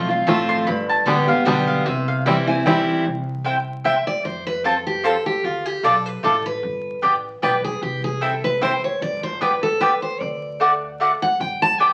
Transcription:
0.00 0.22 B1 medium
0.00 0.24 F2 medium
0.09 0.27 C4 medium
0.09 0.27 F4 medium
0.27 0.61 A1 loud
0.27 0.65 F3 medium
0.27 0.65 A3 loud
0.27 0.38 A3 medium
0.27 0.66 C4 medium
0.27 0.38 C4 medium
0.27 0.66 F4 loud
0.27 0.38 F4 medium
0.27 0.48 A5 medium
0.49 0.66 C6 loud
0.67 0.97 G1 loud
0.67 1.43 G2 loud
0.67 0.88 B5 loud
0.89 1.07 A5 loud
1.06 1.40 A1 medium
1.06 1.27 D3 medium
1.06 1.27 G3 loud
1.06 1.17 G3 medium
1.06 1.28 B3 medium
1.06 1.17 B3 medium
1.06 1.17 D4 medium
1.06 1.26 G4 loud
1.06 1.28 G5 medium
1.27 1.45 B3 medium
1.27 1.45 G4 medium
1.27 1.46 F5 medium
1.45 1.80 B1 medium
1.45 1.84 D3 loud
1.45 1.84 G3 medium
1.45 1.56 G3 medium
1.45 1.84 B3 loud
1.45 1.57 B3 medium
1.45 1.57 D4 medium
1.45 1.85 G4 loud
1.45 1.67 G5 loud
1.67 1.85 F5 medium
1.86 2.77 C2 loud
1.86 2.62 C3 medium
1.86 2.07 E5 medium
2.08 2.26 F5 loud
2.26 2.47 E3 loud
2.26 2.47 G3 medium
2.26 2.36 G3 medium
2.26 2.47 C4 loud
2.26 2.36 C4 medium
2.26 2.46 E4 loud
2.26 2.36 E4 medium
2.26 2.47 G5 medium
2.47 2.66 C4 medium
2.47 2.65 E4 medium
2.47 2.65 G#5 loud
2.66 3.04 E3 loud
2.66 3.04 G3 loud
2.66 2.76 G3 medium
2.66 2.76 C4 medium
2.66 3.04 C4 loud
2.66 3.05 E4 loud
2.66 2.76 E4 medium
2.66 2.94 G5 medium
3.05 3.96 C2 medium
3.45 3.55 C4 medium
3.45 3.55 E4 medium
3.45 3.55 C5 medium
3.45 3.55 G5 loud
3.84 3.94 C4 medium
3.84 3.95 E4 medium
3.84 3.95 C5 loud
3.84 4.06 E5 medium
3.84 3.95 G5 loud
4.07 4.24 D5 medium
4.25 5.15 F2 medium
4.25 4.46 C5 medium
4.47 4.64 B4 loud
4.64 4.74 C4 medium
4.64 4.74 F4 medium
4.64 4.86 A4 medium
4.64 4.75 C5 medium
4.64 4.75 A5 loud
4.87 5.05 G4 medium
5.04 5.14 C4 medium
5.04 5.14 F4 loud
5.04 5.26 A4 loud
5.04 5.14 C5 loud
5.04 5.14 A5 loud
5.26 5.44 G4 medium
5.44 5.74 D2 loud
5.44 5.66 F4 medium
5.66 5.84 G4 medium
5.83 6.17 B1 medium
5.83 5.93 A3 medium
5.83 5.94 F4 loud
5.83 6.06 A4 medium
5.83 5.94 D5 loud
5.83 5.94 A5 loud
6.06 6.23 B4 loud
6.23 6.57 A1 loud
6.23 6.33 A3 medium
6.23 6.33 F4 medium
6.23 6.45 A4 medium
6.23 6.34 D5 loud
6.23 6.34 A5 loud
6.46 6.99 B4 loud
6.63 6.93 G1 medium
7.02 7.37 A1 medium
7.02 7.12 B3 medium
7.02 7.13 G4 loud
7.02 7.13 D5 loud
7.02 7.13 G5 loud
7.42 7.76 B1 medium
7.42 7.52 B3 medium
7.42 7.52 G4 loud
7.42 7.64 B4 medium
7.42 7.53 D5 loud
7.42 7.53 G5 loud
7.64 7.82 G#4 medium
7.82 8.73 C2 medium
7.82 8.04 G4 medium
8.04 8.23 G#4 medium
8.21 8.32 C4 medium
8.21 8.32 E4 loud
8.21 8.43 A4 medium
8.21 8.32 C5 loud
8.21 8.32 G5 loud
8.44 8.62 B4 medium
8.61 8.71 C4 loud
8.61 8.72 E4 loud
8.61 8.72 C5 medium
8.61 8.83 C5 medium
8.61 8.72 G5 loud
8.84 9.01 C#5 medium
9.01 9.92 G1 medium
9.01 9.23 D5 loud
9.23 9.41 C5 medium
9.41 9.51 B3 loud
9.41 9.51 G4 medium
9.41 9.63 B4 medium
9.41 9.51 D5 loud
9.41 9.52 G5 loud
9.63 9.81 A4 loud
9.81 9.91 B3 medium
9.81 9.91 G4 loud
9.81 10.02 B4 loud
9.81 9.91 D5 medium
9.81 9.91 G5 loud
10.02 10.20 C5 medium
10.20 11.11 D2 loud
10.20 11.00 D5 medium
10.60 10.70 A3 medium
10.60 10.70 F#4 loud
10.60 10.71 D5 loud
10.60 10.71 F#5 loud
11.00 11.10 A3 medium
11.00 11.10 F#4 medium
11.00 11.10 D5 medium
11.00 11.11 F#5 loud
11.22 11.40 F#5 loud
11.40 11.93 G1 loud
11.40 11.62 G5 medium
11.62 11.80 A5 loud
11.80 11.90 B3 medium
11.80 11.90 G4 medium
11.80 11.90 D5 loud
11.80 11.93 G5 medium
11.80 11.90 G5 loud

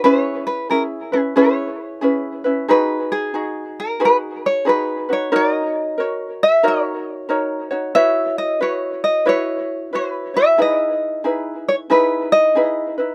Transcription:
0.04 0.70 C#4 medium
0.04 0.70 E4 medium
0.04 0.69 G#4 medium
0.04 0.74 B4 medium
0.04 0.21 C5 medium
0.21 0.46 C#5 medium
0.47 0.70 B4 medium
0.70 1.13 C#4 medium
0.70 1.12 E4 medium
0.70 1.12 G#4 medium
0.70 0.82 A#4 medium
1.12 1.35 C#4 soft
1.12 1.36 E4 soft
1.12 1.20 G#4 medium
1.12 1.36 B4 soft
1.36 2.01 C#4 medium
1.36 2.02 E4 medium
1.36 2.01 G#4 medium
1.36 2.04 B4 medium
1.36 2.41 C#5 medium
2.01 2.45 C#4 medium
2.01 2.44 E4 medium
2.01 2.44 G#4 medium
2.01 2.43 B4 medium
2.44 2.69 C#4 soft
2.44 2.69 E4 soft
2.44 2.68 B4 soft
2.68 3.34 D#4 medium
2.68 3.35 F#4 medium
2.68 3.33 G#4 medium
2.68 4.01 B4 medium
2.68 3.13 B4 medium
3.12 3.79 G#4 medium
3.34 4.00 D#4 medium
3.34 4.01 F#4 medium
3.34 3.99 G#4 medium
3.80 4.03 A#4 medium
4.00 4.66 D#4 medium
4.00 4.66 F#4 medium
4.00 4.64 G#4 medium
4.00 4.67 B4 medium
4.05 4.16 B4 medium
4.46 4.69 C#5 medium
4.65 5.08 D#4 medium
4.65 5.08 F#4 medium
4.65 5.08 G#4 medium
4.65 5.08 B4 medium
4.69 5.11 B4 medium
5.09 5.31 D#4 soft
5.09 5.31 F#4 soft
5.09 5.32 B4 soft
5.09 5.35 C#5 medium
5.32 5.98 D#4 medium
5.32 5.97 F#4 medium
5.32 5.97 A#4 medium
5.32 6.00 C#5 medium
5.36 5.53 D5 loud
5.53 6.43 D#5 loud
5.98 6.63 F#4 medium
5.98 6.62 A#4 medium
5.98 6.63 C#5 medium
6.43 6.66 E5 medium
6.63 7.28 D#4 medium
6.63 7.30 F#4 medium
6.63 7.28 A#4 medium
6.63 7.30 C#5 medium
6.68 7.70 C#5 medium
7.29 7.72 D#4 medium
7.29 7.70 F#4 medium
7.29 7.71 A#4 medium
7.29 7.69 C#5 medium
7.71 7.96 D#4 soft
7.71 7.95 F#4 soft
7.71 7.95 C#5 soft
7.95 8.61 E4 medium
7.95 8.60 F#4 medium
7.95 8.60 B4 medium
7.95 8.61 C#5 medium
7.95 8.38 E5 loud
8.38 8.62 D#5 medium
8.61 9.26 E4 medium
8.61 9.26 F#4 medium
8.61 9.25 B4 medium
8.61 9.03 C#5 medium
8.61 9.26 C#5 medium
9.04 9.28 D#5 medium
9.26 9.93 E4 medium
9.26 9.93 F#4 medium
9.26 9.92 B4 medium
9.26 9.93 C#5 medium
9.26 9.95 C#5 medium
9.93 10.35 E4 medium
9.93 10.34 F#4 medium
9.93 10.34 B4 medium
9.93 10.36 B4 medium
9.93 10.33 C#5 medium
10.34 10.57 E4 soft
10.34 10.58 F#4 soft
10.34 10.58 C#5 soft
10.34 10.60 E5 medium
10.58 11.23 D#4 medium
10.58 11.25 E4 medium
10.58 11.23 G#4 medium
10.58 11.25 B4 medium
10.58 11.22 D#5 medium
11.24 11.89 D#4 medium
11.24 11.90 E4 medium
11.24 11.88 G#4 medium
11.24 11.90 B4 medium
11.68 11.75 C#5 medium
11.90 12.55 D#4 medium
11.90 12.56 E4 medium
11.90 12.54 G#4 medium
11.90 12.56 B4 medium
11.90 12.32 B4 medium
12.32 12.94 D#5 medium
12.55 12.98 D#4 medium
12.55 12.98 E4 medium
12.55 12.97 G#4 medium
12.55 12.97 B4 medium
12.98 13.15 D#4 soft
12.98 13.15 E4 soft
12.98 13.15 B4 soft

